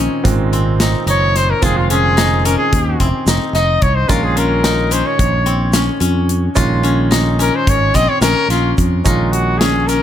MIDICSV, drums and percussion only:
0, 0, Header, 1, 2, 480
1, 0, Start_track
1, 0, Key_signature, -5, "minor"
1, 0, Tempo, 550459
1, 1413, Time_signature, 9, 3, 24, 8
1, 8744, End_track
2, 0, Start_track
2, 0, Title_t, "Drums"
2, 218, Note_on_c, 9, 36, 104
2, 221, Note_on_c, 9, 38, 34
2, 221, Note_on_c, 9, 42, 79
2, 305, Note_off_c, 9, 36, 0
2, 309, Note_off_c, 9, 38, 0
2, 309, Note_off_c, 9, 42, 0
2, 463, Note_on_c, 9, 42, 56
2, 551, Note_off_c, 9, 42, 0
2, 698, Note_on_c, 9, 38, 112
2, 698, Note_on_c, 9, 42, 75
2, 705, Note_on_c, 9, 82, 50
2, 785, Note_off_c, 9, 38, 0
2, 785, Note_off_c, 9, 42, 0
2, 793, Note_off_c, 9, 82, 0
2, 939, Note_on_c, 9, 42, 55
2, 1026, Note_off_c, 9, 42, 0
2, 1183, Note_on_c, 9, 38, 31
2, 1183, Note_on_c, 9, 42, 59
2, 1270, Note_off_c, 9, 38, 0
2, 1270, Note_off_c, 9, 42, 0
2, 1419, Note_on_c, 9, 36, 113
2, 1420, Note_on_c, 9, 82, 57
2, 1421, Note_on_c, 9, 42, 78
2, 1506, Note_off_c, 9, 36, 0
2, 1508, Note_off_c, 9, 82, 0
2, 1509, Note_off_c, 9, 42, 0
2, 1659, Note_on_c, 9, 42, 59
2, 1746, Note_off_c, 9, 42, 0
2, 1900, Note_on_c, 9, 38, 105
2, 1900, Note_on_c, 9, 42, 79
2, 1987, Note_off_c, 9, 38, 0
2, 1987, Note_off_c, 9, 42, 0
2, 2141, Note_on_c, 9, 42, 63
2, 2144, Note_on_c, 9, 82, 46
2, 2228, Note_off_c, 9, 42, 0
2, 2231, Note_off_c, 9, 82, 0
2, 2378, Note_on_c, 9, 36, 98
2, 2378, Note_on_c, 9, 42, 73
2, 2465, Note_off_c, 9, 36, 0
2, 2465, Note_off_c, 9, 42, 0
2, 2616, Note_on_c, 9, 42, 54
2, 2617, Note_on_c, 9, 36, 59
2, 2703, Note_off_c, 9, 42, 0
2, 2704, Note_off_c, 9, 36, 0
2, 2854, Note_on_c, 9, 82, 57
2, 2857, Note_on_c, 9, 38, 110
2, 2857, Note_on_c, 9, 42, 82
2, 2942, Note_off_c, 9, 82, 0
2, 2945, Note_off_c, 9, 38, 0
2, 2945, Note_off_c, 9, 42, 0
2, 3098, Note_on_c, 9, 38, 29
2, 3098, Note_on_c, 9, 42, 52
2, 3185, Note_off_c, 9, 38, 0
2, 3185, Note_off_c, 9, 42, 0
2, 3330, Note_on_c, 9, 42, 50
2, 3333, Note_on_c, 9, 36, 72
2, 3417, Note_off_c, 9, 42, 0
2, 3420, Note_off_c, 9, 36, 0
2, 3569, Note_on_c, 9, 42, 75
2, 3571, Note_on_c, 9, 36, 104
2, 3573, Note_on_c, 9, 82, 56
2, 3656, Note_off_c, 9, 42, 0
2, 3658, Note_off_c, 9, 36, 0
2, 3660, Note_off_c, 9, 82, 0
2, 3810, Note_on_c, 9, 42, 54
2, 3897, Note_off_c, 9, 42, 0
2, 4047, Note_on_c, 9, 38, 95
2, 4047, Note_on_c, 9, 42, 78
2, 4134, Note_off_c, 9, 38, 0
2, 4134, Note_off_c, 9, 42, 0
2, 4286, Note_on_c, 9, 82, 43
2, 4289, Note_on_c, 9, 42, 64
2, 4373, Note_off_c, 9, 82, 0
2, 4376, Note_off_c, 9, 42, 0
2, 4528, Note_on_c, 9, 36, 97
2, 4529, Note_on_c, 9, 42, 84
2, 4615, Note_off_c, 9, 36, 0
2, 4616, Note_off_c, 9, 42, 0
2, 4765, Note_on_c, 9, 42, 50
2, 4853, Note_off_c, 9, 42, 0
2, 5000, Note_on_c, 9, 82, 54
2, 5001, Note_on_c, 9, 38, 97
2, 5001, Note_on_c, 9, 42, 86
2, 5087, Note_off_c, 9, 82, 0
2, 5088, Note_off_c, 9, 38, 0
2, 5088, Note_off_c, 9, 42, 0
2, 5245, Note_on_c, 9, 42, 61
2, 5332, Note_off_c, 9, 42, 0
2, 5487, Note_on_c, 9, 42, 54
2, 5574, Note_off_c, 9, 42, 0
2, 5720, Note_on_c, 9, 82, 54
2, 5727, Note_on_c, 9, 36, 112
2, 5729, Note_on_c, 9, 42, 90
2, 5808, Note_off_c, 9, 82, 0
2, 5815, Note_off_c, 9, 36, 0
2, 5816, Note_off_c, 9, 42, 0
2, 5969, Note_on_c, 9, 42, 52
2, 6056, Note_off_c, 9, 42, 0
2, 6209, Note_on_c, 9, 38, 114
2, 6209, Note_on_c, 9, 42, 82
2, 6296, Note_off_c, 9, 38, 0
2, 6296, Note_off_c, 9, 42, 0
2, 6452, Note_on_c, 9, 82, 45
2, 6456, Note_on_c, 9, 42, 61
2, 6540, Note_off_c, 9, 82, 0
2, 6543, Note_off_c, 9, 42, 0
2, 6691, Note_on_c, 9, 36, 107
2, 6692, Note_on_c, 9, 42, 76
2, 6778, Note_off_c, 9, 36, 0
2, 6779, Note_off_c, 9, 42, 0
2, 6930, Note_on_c, 9, 82, 16
2, 6931, Note_on_c, 9, 36, 66
2, 6933, Note_on_c, 9, 38, 29
2, 6933, Note_on_c, 9, 42, 55
2, 7017, Note_off_c, 9, 82, 0
2, 7019, Note_off_c, 9, 36, 0
2, 7020, Note_off_c, 9, 38, 0
2, 7020, Note_off_c, 9, 42, 0
2, 7168, Note_on_c, 9, 82, 54
2, 7171, Note_on_c, 9, 38, 109
2, 7171, Note_on_c, 9, 42, 79
2, 7255, Note_off_c, 9, 82, 0
2, 7259, Note_off_c, 9, 38, 0
2, 7259, Note_off_c, 9, 42, 0
2, 7416, Note_on_c, 9, 38, 29
2, 7416, Note_on_c, 9, 42, 51
2, 7503, Note_off_c, 9, 38, 0
2, 7503, Note_off_c, 9, 42, 0
2, 7653, Note_on_c, 9, 82, 19
2, 7657, Note_on_c, 9, 36, 74
2, 7661, Note_on_c, 9, 42, 56
2, 7741, Note_off_c, 9, 82, 0
2, 7744, Note_off_c, 9, 36, 0
2, 7748, Note_off_c, 9, 42, 0
2, 7897, Note_on_c, 9, 36, 94
2, 7897, Note_on_c, 9, 82, 50
2, 7899, Note_on_c, 9, 42, 68
2, 7984, Note_off_c, 9, 36, 0
2, 7984, Note_off_c, 9, 82, 0
2, 7986, Note_off_c, 9, 42, 0
2, 8137, Note_on_c, 9, 42, 49
2, 8224, Note_off_c, 9, 42, 0
2, 8379, Note_on_c, 9, 38, 99
2, 8379, Note_on_c, 9, 42, 64
2, 8466, Note_off_c, 9, 38, 0
2, 8466, Note_off_c, 9, 42, 0
2, 8622, Note_on_c, 9, 42, 50
2, 8625, Note_on_c, 9, 82, 41
2, 8709, Note_off_c, 9, 42, 0
2, 8712, Note_off_c, 9, 82, 0
2, 8744, End_track
0, 0, End_of_file